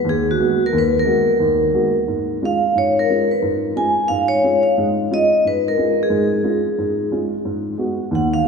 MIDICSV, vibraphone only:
0, 0, Header, 1, 2, 480
1, 0, Start_track
1, 0, Tempo, 335946
1, 1039, Time_signature, 4, 2, 24, 8
1, 12115, End_track
2, 0, Start_track
2, 0, Title_t, "Vibraphone"
2, 0, Program_c, 0, 11
2, 133, Note_on_c, 0, 68, 80
2, 413, Note_off_c, 0, 68, 0
2, 442, Note_on_c, 0, 66, 82
2, 904, Note_off_c, 0, 66, 0
2, 946, Note_on_c, 0, 70, 84
2, 1073, Note_off_c, 0, 70, 0
2, 1120, Note_on_c, 0, 71, 80
2, 1388, Note_off_c, 0, 71, 0
2, 1421, Note_on_c, 0, 70, 75
2, 2766, Note_off_c, 0, 70, 0
2, 3507, Note_on_c, 0, 77, 83
2, 3970, Note_off_c, 0, 77, 0
2, 3973, Note_on_c, 0, 73, 81
2, 4258, Note_off_c, 0, 73, 0
2, 4276, Note_on_c, 0, 70, 77
2, 4699, Note_off_c, 0, 70, 0
2, 4734, Note_on_c, 0, 71, 62
2, 4809, Note_off_c, 0, 71, 0
2, 5387, Note_on_c, 0, 80, 83
2, 5824, Note_off_c, 0, 80, 0
2, 5833, Note_on_c, 0, 77, 79
2, 6118, Note_off_c, 0, 77, 0
2, 6120, Note_on_c, 0, 73, 75
2, 6617, Note_on_c, 0, 77, 65
2, 6628, Note_off_c, 0, 73, 0
2, 6789, Note_off_c, 0, 77, 0
2, 7339, Note_on_c, 0, 75, 94
2, 7761, Note_off_c, 0, 75, 0
2, 7821, Note_on_c, 0, 71, 79
2, 7944, Note_off_c, 0, 71, 0
2, 8119, Note_on_c, 0, 70, 78
2, 8586, Note_off_c, 0, 70, 0
2, 8614, Note_on_c, 0, 68, 70
2, 10140, Note_off_c, 0, 68, 0
2, 11647, Note_on_c, 0, 78, 65
2, 11909, Note_on_c, 0, 77, 79
2, 11914, Note_off_c, 0, 78, 0
2, 12078, Note_off_c, 0, 77, 0
2, 12115, End_track
0, 0, End_of_file